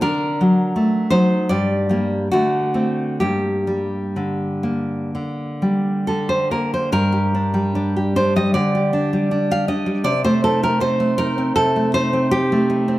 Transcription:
0.01 D3 D4 A#4
0.41 F#3
0.76 A3
1.10 F#3 D#4 C5
1.49 G2 G4 D5
1.89 G3 A#3
2.32 D3 A3 F#4
2.74 A3 C4
3.20 G2 A#3 G4
3.67 G3
4.16 D3
4.63 A#3
5.15 D3
5.62 G3
6.07 D3 A4
6.29 C5
6.51 A#3 A#4
6.74 C5
6.92 G2 A#4
7.12 G4
7.35 D4
7.54 G3
7.75 D4
7.96 G4
8.16 D4 C5
8.36 G3 D#5
8.54 D3 D5
8.75 G4
8.93 D4
9.13 G3
9.31 D4
9.51 G4 F5
9.68 D4 D#5
9.86 G3
10.04 C3 D5
10.24 A3 C5
10.44 D#4 A4
10.63 C4 A#4
10.80 D#4 C5
11.00 A3
11.18 D#4 A#4
11.38 C4
11.56 C3 A4
11.76 A3
11.94 D#4 C5
12.13 C4
12.31 D#4 G4
12.52 A3
12.70 D#4
12.88 C4

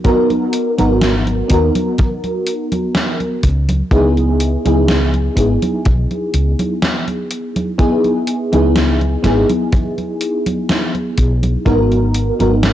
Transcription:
0.04 B3 D#4 F#4 A#4, kick, closed hi-hat, high conga
0.30 closed hi-hat, high conga
0.53 closed hi-hat
0.78 G#1 B3 D#4 F#4 A#4, closed hi-hat, high conga
1.01 snare, closed hi-hat, high conga
1.27 closed hi-hat, high conga
1.48 D#2 B3 D#4 F#4 A#4, kick, closed hi-hat
1.75 closed hi-hat, high conga
1.98 kick, closed hi-hat, high conga
2.24 closed hi-hat, high conga
2.47 closed hi-hat
2.72 closed hi-hat, high conga
2.95 snare, closed hi-hat, high conga
3.20 closed hi-hat, high conga
3.43 C#2, kick, closed hi-hat
3.69 closed hi-hat, high conga
3.91 C#2 B3 D#4 E4 G#4, kick, closed hi-hat, high conga
4.17 closed hi-hat, high conga
4.40 closed hi-hat
4.65 C#2 B3 D#4 E4 G#4, closed hi-hat, high conga
4.88 snare, closed hi-hat, high conga
5.14 closed hi-hat, high conga
5.36 G#1 B3 D#4 E4 G#4, kick, closed hi-hat
5.62 closed hi-hat, high conga
5.85 B1, kick, closed hi-hat, high conga
6.11 closed hi-hat, high conga
6.34 C#2, closed hi-hat
6.59 closed hi-hat, high conga
6.82 snare, closed hi-hat, high conga
7.08 closed hi-hat, high conga
7.31 closed hi-hat
7.56 closed hi-hat, high conga
7.78 B3 D#4 E4 G#4, kick, closed hi-hat, high conga
8.04 closed hi-hat, high conga
8.27 closed hi-hat
8.52 C#2 B3 D#4 E4 G#4, closed hi-hat, high conga
8.76 snare, closed hi-hat, high conga
9.01 closed hi-hat, high conga
9.23 G#1 B3 D#4 E4 G#4, kick, snare, closed hi-hat
9.50 closed hi-hat, high conga
9.73 kick, closed hi-hat, high conga
9.98 closed hi-hat, high conga
10.21 closed hi-hat
10.46 closed hi-hat, high conga
10.69 snare, closed hi-hat, high conga
10.95 closed hi-hat, high conga
11.18 B1, kick, closed hi-hat
11.43 closed hi-hat, high conga
11.65 G#1 B3 D#4 F#4 A#4, kick, closed hi-hat, high conga
11.92 closed hi-hat, high conga
12.14 closed hi-hat
12.39 G#1 B3 D#4 F#4 A#4, closed hi-hat, high conga
12.63 snare, closed hi-hat, high conga

